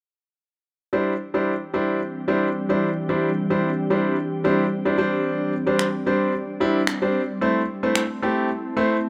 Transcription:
0.93 4.94 E3 medium
0.93 1.12 G3 medium
0.93 4.94 G3 medium
0.93 7.38 C4 medium
0.93 1.12 D4 medium
0.93 4.94 D4 medium
0.93 1.12 E4 medium
0.93 4.94 G4 medium
0.93 1.12 C5 medium
1.34 1.52 G3 medium
1.34 1.52 D4 medium
1.34 1.52 E4 medium
1.34 1.53 C5 medium
1.74 1.99 G3 medium
1.74 1.99 D4 medium
1.74 1.99 E4 medium
1.74 1.99 C5 medium
2.28 2.47 G3 medium
2.28 2.47 D4 medium
2.28 2.47 E4 medium
2.28 2.47 C5 medium
2.69 2.87 G3 medium
2.69 2.88 D4 medium
2.69 2.88 E4 medium
2.69 2.88 C5 medium
3.09 3.28 G3 medium
3.09 3.28 D4 medium
3.09 3.28 E4 medium
3.09 3.28 C5 medium
3.50 3.69 G3 medium
3.50 3.69 D4 medium
3.50 3.69 E4 medium
3.50 3.69 C5 medium
3.90 4.15 G3 medium
3.90 4.15 D4 medium
3.90 4.15 E4 medium
3.90 4.16 C5 medium
4.44 4.63 G3 medium
4.44 4.64 D4 medium
4.44 4.64 E4 medium
4.44 4.64 C5 medium
4.85 4.97 G3 medium
4.85 4.97 D4 medium
4.85 4.98 E4 medium
4.85 4.97 C5 medium
4.98 7.39 G3 medium
4.98 5.52 G3 medium
4.98 5.52 C4 medium
4.98 7.39 D4 medium
4.98 5.52 D4 medium
4.98 5.52 C5 medium
5.67 5.85 G3 medium
5.67 5.85 C4 medium
5.67 5.85 D4 medium
5.67 5.85 C5 medium
5.79 finger snap medium
6.06 6.31 G3 medium
6.06 6.32 C4 medium
6.06 6.32 D4 medium
6.06 6.32 C5 medium
6.60 6.80 G3 medium
6.60 6.80 C4 medium
6.60 6.80 D4 medium
6.60 6.80 E4 medium
6.87 finger snap loud
7.02 7.20 G3 medium
7.02 7.20 C4 medium
7.02 7.20 D4 medium
7.02 7.20 C5 medium
7.41 9.09 A3 medium
7.41 7.61 A3 medium
7.41 9.09 C4 medium
7.41 7.61 C4 medium
7.41 9.09 E4 medium
7.41 7.61 E4 medium
7.41 7.61 C5 medium
7.83 8.01 A3 medium
7.83 8.01 C4 medium
7.83 8.01 E4 medium
7.83 8.01 C5 medium
7.95 finger snap medium
8.22 8.48 A3 medium
8.22 8.48 C4 medium
8.22 8.48 E4 medium
8.22 8.48 G4 medium
8.77 8.96 A3 medium
8.77 8.96 C4 medium
8.77 8.96 E4 medium
8.77 8.96 C5 medium

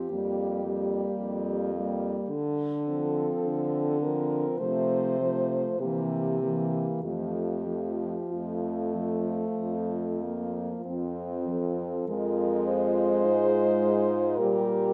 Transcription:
0.00 0.10 F3 soft
0.00 2.04 G4 medium
0.11 1.08 F2 soft
0.11 0.66 G3 soft
0.11 0.65 A#3 soft
0.65 1.73 G3 soft
0.65 1.72 A#3 soft
1.20 2.17 F2 soft
1.75 2.30 G3 soft
1.75 2.30 A#3 soft
2.30 3.30 D3 soft
2.30 4.03 A4 medium
2.87 3.99 F3 soft
2.87 3.99 C4 soft
3.44 4.45 D3 soft
4.01 4.59 F3 soft
4.01 4.58 C4 soft
4.01 4.61 A#4 medium
4.59 5.65 C3 soft
4.59 5.19 F3 soft
4.59 5.18 A3 soft
4.59 5.83 C5 medium
5.19 5.80 F3 soft
5.19 5.79 A3 soft
5.80 6.89 C3 soft
5.80 6.42 E3 soft
5.80 6.40 A#3 soft
5.80 7.03 G4 medium
6.41 7.03 E3 soft
6.41 7.02 A#3 soft
7.03 8.15 F2 soft
7.03 7.66 F3 soft
7.03 7.65 A3 soft
7.03 8.33 G4 medium
7.67 8.93 F3 soft
7.67 8.17 A3 soft
8.30 9.44 F2 soft
8.30 10.25 A3 soft
8.30 11.30 F4 soft
8.95 10.06 F3 soft
9.59 10.71 F2 soft
10.23 11.46 F3 soft
10.23 10.85 A#3 soft
10.85 11.95 F2 soft
10.85 12.06 C4 soft
11.47 12.08 F3 soft
11.47 12.11 A4 medium
12.09 13.27 F2 soft
12.09 14.34 G#3 medium
12.09 14.40 F4 medium
12.09 12.68 A#4 medium
12.67 14.39 C5 medium
13.25 14.40 G#2 medium
14.37 14.93 A#2 medium
14.37 14.93 G3 medium
14.37 14.93 G4 soft
14.37 14.93 A#4 medium

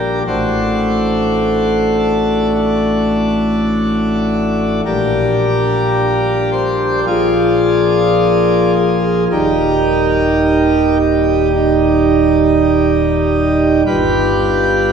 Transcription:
0.00 0.23 A#1 medium
0.00 0.23 A#2 medium
0.00 0.23 G3 soft
0.00 0.22 D4 medium
0.00 0.22 G4 medium
0.00 0.19 A#4 medium
0.27 4.81 A1 medium
0.27 4.81 A2 medium
0.27 4.81 A3 medium
0.27 4.81 D4 soft
0.27 2.52 F#4 soft
0.27 1.94 C5 loud
1.99 2.47 A4 medium
2.54 4.80 F#4 loud
4.85 7.05 A#1 medium
4.85 7.05 A#2 medium
4.85 7.05 G3 medium
4.85 7.05 D4 medium
4.85 7.05 G4 medium
4.85 6.49 A#4 loud
6.52 6.99 C5 medium
7.07 9.28 A#1 medium
7.07 9.28 A#2 medium
7.07 9.28 F3 medium
7.07 9.27 F4 medium
7.07 8.74 G#4 medium
7.07 8.71 D5 loud
8.76 9.24 G#4 loud
9.31 13.83 D#1 medium
9.31 13.83 D#2 medium
9.31 13.83 G3 medium
9.31 11.52 D#4 medium
9.31 10.98 G4 medium
9.31 10.96 A#4 loud
11.00 11.48 G4 medium
11.54 13.82 D#4 loud
13.86 14.92 G1 medium
13.86 14.92 G2 medium
13.86 14.92 G3 medium
13.86 14.92 F4 medium
13.86 14.92 G4 medium
13.86 14.92 B4 loud

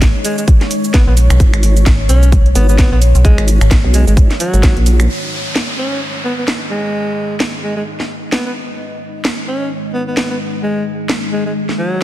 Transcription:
0.00 0.13 G#1 loud
0.00 5.05 G#3 medium
0.00 5.05 D#4 medium
0.00 5.05 C#5 medium
0.00 kick loud
0.00 snare loud
0.00 closed hi-hat medium
0.00 shaker soft
0.24 0.33 G#3 medium
0.24 open hi-hat loud
0.24 shaker medium
0.38 0.44 G#3 medium
0.38 closed hi-hat soft
0.38 shaker soft
0.48 kick loud
0.48 closed hi-hat medium
0.48 shaker soft
0.61 snare soft
0.61 closed hi-hat soft
0.71 open hi-hat loud
0.71 shaker medium
0.84 shaker soft
0.94 1.02 B3 medium
0.94 kick loud
0.94 snare loud
0.94 closed hi-hat medium
0.94 shaker soft
1.07 1.28 A#1 loud
1.07 1.13 B3 medium
1.17 open hi-hat loud
1.17 shaker medium
1.30 1.38 B1 loud
1.30 finger snap medium
1.30 closed hi-hat medium
1.30 shaker soft
1.40 1.85 G#1 loud
1.40 kick loud
1.40 closed hi-hat medium
1.40 shaker soft
1.54 finger snap medium
1.54 closed hi-hat medium
1.63 open hi-hat loud
1.63 shaker medium
1.77 closed hi-hat soft
1.77 shaker soft
1.86 2.08 G#1 loud
1.86 kick loud
1.86 snare loud
1.86 closed hi-hat medium
1.86 shaker soft
2.09 2.54 B1 loud
2.09 2.30 C#4 loud
2.09 open hi-hat loud
2.09 shaker medium
2.23 closed hi-hat soft
2.23 shaker soft
2.32 kick loud
2.32 closed hi-hat medium
2.32 shaker soft
2.46 closed hi-hat soft
2.55 2.90 G#1 medium
2.55 2.64 B3 medium
2.55 open hi-hat loud
2.55 shaker medium
2.69 2.75 B3 medium
2.69 shaker soft
2.78 2.87 B3 medium
2.78 kick loud
2.78 snare loud
2.78 closed hi-hat medium
2.78 shaker soft
2.92 3.13 A#1 loud
2.92 2.98 B3 medium
3.02 open hi-hat loud
3.02 shaker medium
3.15 3.36 B1 loud
3.15 closed hi-hat medium
3.15 shaker soft
3.24 3.46 G#3 loud
3.24 kick loud
3.24 closed hi-hat medium
3.24 shaker soft
3.38 3.59 G#1 loud
3.38 finger snap medium
3.38 closed hi-hat medium
3.48 open hi-hat loud
3.48 shaker medium
3.61 3.82 G#1 loud
3.61 finger snap medium
3.61 closed hi-hat soft
3.61 shaker soft
3.71 kick loud
3.71 snare loud
3.71 closed hi-hat medium
3.71 shaker soft
3.84 4.05 B1 loud
3.94 4.02 G#3 medium
3.94 open hi-hat loud
3.94 shaker medium
4.07 4.28 G#1 loud
4.07 4.13 G#3 medium
4.07 closed hi-hat soft
4.07 shaker soft
4.17 kick loud
4.17 closed hi-hat medium
4.17 shaker soft
4.31 snare soft
4.31 closed hi-hat soft
4.40 4.77 F#3 loud
4.40 open hi-hat loud
4.40 shaker medium
4.54 4.74 G#1 loud
4.54 closed hi-hat soft
4.54 shaker soft
4.63 kick loud
4.63 snare loud
4.63 closed hi-hat medium
4.63 shaker soft
4.77 5.08 A#1 loud
4.77 closed hi-hat soft
4.86 open hi-hat loud
4.86 shaker medium
5.00 finger snap medium
5.00 closed hi-hat medium
5.00 shaker soft
5.09 12.03 G#3 medium
5.09 12.03 D#4 medium
5.09 12.03 D#5 medium
5.09 downlifter medium
5.56 snare loud
5.78 6.00 C#4 medium
6.25 6.33 B3 medium
6.38 6.44 B3 medium
6.48 snare loud
6.71 7.36 G#3 medium
7.40 snare loud
7.63 7.72 G#3 medium
7.77 7.83 G#3 medium
8.00 snare soft
8.32 8.41 B3 medium
8.32 snare loud
8.46 8.52 B3 medium
9.25 snare loud
9.48 9.69 C#4 medium
9.94 10.03 B3 medium
10.07 10.13 B3 medium
10.17 10.26 B3 medium
10.17 snare loud
10.30 10.37 B3 medium
10.63 10.84 G#3 medium
11.09 snare loud
11.32 11.41 G#3 medium
11.46 11.52 G#3 medium
11.69 snare soft
11.78 12.03 F#3 medium

